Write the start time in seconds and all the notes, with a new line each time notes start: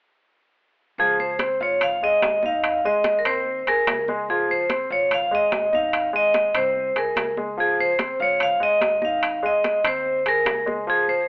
0.98 C#2 F3 F4 G#4, high conga
1.19 C5, high conga
1.39 C4 C5, high conga, high timbale, low timbale
1.60 G#1 F4 C#5 F5, high conga
1.81 F5, high conga, high timbale
2.01 G#3 G#4 D#5, high conga
2.22 G#1, high conga, high timbale, low timbale
2.43 D#4 D#5 F5, high conga
2.64 high conga, high timbale
2.84 G#3 G#4 D#5, high conga
3.04 high conga, high timbale, low timbale
3.19 A#4
3.25 D#2 C4 C5, high conga, high timbale
3.46 high conga
3.67 D#2 G#4 A#4 G#5, high conga, high timbale
3.87 C#2, high conga, high timbale, low timbale
4.08 G#3 G#4, high conga
4.29 F3 F4 G#4, high conga
4.49 C5, high conga
4.70 C4 C5, high conga, high timbale, low timbale
4.90 G#1 F4 C#5 F5, high conga
5.11 F5, high conga, high timbale
5.31 G#3 G#4 D#5, high conga
5.52 G#1, high conga, high timbale, low timbale
5.72 D#4 D#5 F5, high conga
5.93 high conga, high timbale
6.13 G#3 G#4 D#5, high conga
6.34 high conga, high timbale, low timbale
6.54 C2 C4 C5, high conga, high timbale
6.75 high conga
6.96 C2 G#4 A#4 G#5, high conga, high timbale
7.16 C#2, high conga, high timbale, low timbale
7.37 G#3 G#4, high conga
7.57 F3 F4 G#4, high conga
7.79 C5, high conga
7.99 C4 C5, high conga, high timbale, low timbale
8.20 G#1 F4 C#5 F5, high conga
8.40 F5, high conga, high timbale
8.60 G#3 G#4 D#5, high conga
8.81 G#1, high conga, high timbale, low timbale
9.02 D#4 D#5 F5, high conga
9.23 high conga, high timbale
9.43 G#3 G#4 D#5, high conga
9.64 high conga, high timbale, low timbale
9.84 D#2 C4 C5, high conga, high timbale
10.06 high conga
10.26 G#4 A#4 G#5, high conga, high timbale
10.45 C#2, high conga, high timbale, low timbale
10.66 G#3 G#4, high conga
10.87 F3 F4 G#4, high conga
11.08 C5, high conga